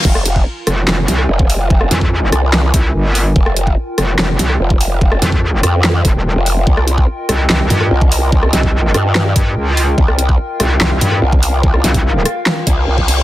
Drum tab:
CC |x---------------|----------------|----------------|----------------|
HH |--x---x---x---o-|--x---x---x---o-|--x---x---x---o-|--x---x---x---o-|
CP |--------x-------|--------x-------|--------x-------|--------x-------|
SD |-r----r-o-or----|-ro---r-o-------|-r----r-o-or----|-ro---r-o-------|
BD |o--o---------o--|o--o------o-----|o--o---------o--|o--o------o-----|

CC |----------------|----------------|----------------|----------------|
HH |--x---x---x---o-|--x---x---x---o-|--x---x---x---o-|--xx--x---x---o-|
CP |--------x-------|--------x-------|--------x-------|--------x-------|
SD |-r----r-o-or----|-ro---r-o-------|-r----r-o-or----|-ro---r-o-------|
BD |o--o---------o--|o--o------o-----|o--o---------o--|o--o------o--o--|